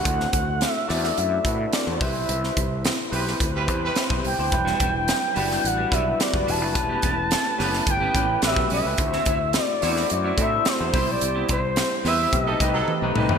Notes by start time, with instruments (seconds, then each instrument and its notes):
Already playing: analog synth lead F#5
0.03 fretless electric bass D2, tine electric piano A3 D4 E4 F#4 C5, kick, closed hi-hat
0.20 snare
0.33 fretless electric bass D2, kick, closed hi-hat
0.61 snare, closed hi-hat
0.70 analog synth lead E5
0.87 fretless electric bass E2, tine electric piano A3 D4 E4 F#4 D5, snare, open hi-hat
1.04 snare
1.18 fretless electric bass F#2, analog synth lead E5, closed hi-hat
1.44 fretless electric bass A2, tine electric piano A3 D4 E4 F#4 B4, kick, closed hi-hat
1.73 analog synth lead D5, snare, closed hi-hat
1.86 fretless electric bass E2, tine electric piano A3 D4 E4 F#4 C5
2.00 fretless electric bass C2, tine electric piano C4 E4 G4 B4 C5, analog synth lead E5, kick, open hi-hat
2.16 fretless electric bass B1
2.29 fretless electric bass C2, closed hi-hat
2.44 snare
2.57 fretless electric bass C2, kick, closed hi-hat
2.85 snare, closed hi-hat
3.12 fretless electric bass B1, horn section G3 E4 B4, tine electric piano C4 E4 G4 B4 C5, open hi-hat
3.27 snare
3.40 fretless electric bass D2, kick, closed hi-hat
3.56 horn section G3 E4 B4
3.67 fretless electric bass E2, tine electric piano C4 E4 G4 B4 C5, kick, closed hi-hat
3.85 horn section G3 E4 B4
3.96 snare, closed hi-hat
4.10 fretless electric bass B1, tine electric piano B3 C4 E4 G4 C5, kick
4.25 fretless electric bass C2, analog synth lead G5, open hi-hat
4.38 fretless electric bass D2, tine electric piano B3 C4 E4 G4 C5
4.51 fretless electric bass E1, tine electric piano F#3 G3 D4 E4 B4, muted clean electric guitar stroke, kick, closed hi-hat
4.65 clean electric guitar G3 D4 F#4, snare
4.79 fretless electric bass E1, clean electric guitar G3 D4 F#4, kick, closed hi-hat
4.93 muted clean electric guitar stroke
5.06 muted clean electric guitar stroke, snare, closed hi-hat
5.21 muted clean electric guitar stroke
5.34 fretless electric bass F#1, clean electric guitar G3 D4 F#4, tine electric piano G3 D4 E4 F#4 B4, open hi-hat
5.48 clean electric guitar G3 D4 F#4, snare
5.63 fretless electric bass A1, analog synth lead F#5, muted clean electric guitar stroke, closed hi-hat
5.77 clean electric guitar G3 D4 F#4
5.91 fretless electric bass B1, clean electric guitar G3 D4 F#4, tine electric piano G3 D4 E4 F#4 B4, analog synth lead E5, kick, closed hi-hat
6.18 analog synth lead D5, muted clean electric guitar stroke, snare, closed hi-hat
6.32 fretless electric bass F#1, tine electric piano G3 D4 E4 F#4 B4, muted clean electric guitar stroke, kick
6.46 fretless electric bass E1, clean electric guitar G3 D4 F#4, analog synth lead A5, open hi-hat
6.60 fretless electric bass F#1, tine electric piano G3 D4 E4 F#4 B4, muted clean electric guitar stroke
6.73 fretless electric bass E1, tine electric piano A3 C4 E4 G4 B4, muted clean electric guitar stroke, kick, closed hi-hat
6.80 tine electric piano C#4
6.89 clean electric guitar B3 C#4 G4
7.02 fretless electric bass E1, clean electric guitar B3 C#4 G4, kick, closed hi-hat
7.17 muted clean electric guitar stroke
7.31 muted clean electric guitar stroke, snare, closed hi-hat
7.45 muted clean electric guitar stroke
7.58 fretless electric bass F#1, tine electric piano A3 C#4 E4 G4 B4, clean electric guitar B3 C#4 G4, snare, open hi-hat
7.72 clean electric guitar B3 C#4 G4, snare
7.87 fretless electric bass G1, analog synth lead G5, muted clean electric guitar stroke, kick, closed hi-hat
8.00 clean electric guitar B3 C#4 G4
8.14 fretless electric bass A1, tine electric piano A3 C#4 E4 G4 B4, clean electric guitar B3 C#4 G4, kick, closed hi-hat
8.28 muted clean electric guitar stroke
8.42 fretless electric bass A1, tine electric piano A3 C#4 F#4 G4 B4, analog synth lead E5, muted clean electric guitar stroke, snare, closed hi-hat
8.56 fretless electric bass B1, tine electric piano A3 C#4 F#4 G4 B4, muted clean electric guitar stroke, kick
8.70 fretless electric bass B1, clean electric guitar G3 C#4 F#4, analog synth lead E5, open hi-hat
8.85 fretless electric bass C#2, tine electric piano A3 C#4 F#4 G4 B4, muted clean electric guitar stroke
8.98 fretless electric bass D2, tine electric piano A3 D4 E4 F#4 C5, muted clean electric guitar stroke, kick, closed hi-hat
9.13 clean electric guitar C4 E4 F#4, snare
9.25 fretless electric bass D2, clean electric guitar C4 E4 F#4, kick, closed hi-hat
9.40 muted clean electric guitar stroke
9.53 muted clean electric guitar stroke, snare, closed hi-hat
9.63 analog synth lead D5
9.68 muted clean electric guitar stroke
9.81 fretless electric bass E2, tine electric piano A3 D4 E4 F#4 C5, clean electric guitar C4 E4 F#4, snare, open hi-hat
9.96 clean electric guitar C4 E4 F#4, snare
10.10 fretless electric bass F#2, analog synth lead D5, muted clean electric guitar stroke, closed hi-hat
10.24 clean electric guitar C4 E4 F#4
10.37 fretless electric bass A2, tine electric piano A3 D4 E4 F#4 C5, clean electric guitar C4 E4 F#4, kick, closed hi-hat
10.42 analog synth lead E5
10.52 muted clean electric guitar stroke
10.65 analog synth lead C5, muted clean electric guitar stroke, snare, closed hi-hat
10.79 fretless electric bass E2, tine electric piano A3 D4 E4 F#4 C5, muted clean electric guitar stroke
10.93 fretless electric bass C2, tine electric piano G3 C4 E4 G4 C5, clean electric guitar B3 E4 G4, kick, open hi-hat
11.07 fretless electric bass B1, analog synth lead D5, muted clean electric guitar stroke
11.21 fretless electric bass C2, muted clean electric guitar stroke, closed hi-hat
11.35 clean electric guitar B3 E4 G4
11.48 fretless electric bass C2, clean electric guitar B3 E4 G4, analog synth lead C5, kick, closed hi-hat
11.63 muted clean electric guitar stroke
11.76 muted clean electric guitar stroke, snare, closed hi-hat
11.91 muted clean electric guitar stroke
12.04 fretless electric bass E2, horn section G3 E4 B4, clean electric guitar B3 E4 G4, tine electric piano B3 C4 E4 G4 C5, analog synth lead E5, snare, open hi-hat
12.19 clean electric guitar B3 E4 G4
12.32 fretless electric bass B1, tine electric piano A3 C4 D#4 G4 B4, analog synth lead D#5, muted clean electric guitar stroke, kick, closed hi-hat
12.46 horn section F#3 D#4 A4, clean electric guitar A3 D#4 G4
12.60 fretless electric bass C2, tine electric piano A3 C4 D#4 G4 B4, clean electric guitar A3 D#4 G4, kick, closed hi-hat
12.74 horn section F#3 D#4 A4, muted clean electric guitar stroke
12.88 muted clean electric guitar stroke, high tom
13.02 fretless electric bass B1, tine electric piano A3 C4 D#4 G4 B4, muted clean electric guitar stroke
13.16 fretless electric bass C2, clean electric guitar A3 D#4 G4, mid tom
13.29 fretless electric bass D#2, tine electric piano A3 C4 D#4 G4 B4, muted clean electric guitar stroke, floor tom